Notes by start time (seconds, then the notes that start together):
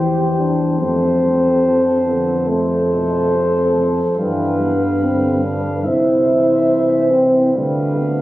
Already playing: E2 E3 G4 C5
0.37 G3 D4
0.80 F2 A3 C4 A4 C5
1.23 G3
1.64 F3
2.05 D3 B3
2.47 C3 A3 A4 C5
2.92 B2
3.34 C3
3.77 F3
4.18 G2 E3 G3 B4 F5
4.61 B3
5.02 D3 C4
5.43 D4
5.84 C2 C3 E4 C5 E5
6.30 E3
7.12 C4
7.54 D2 D3 G3 B4 F5
7.96 B3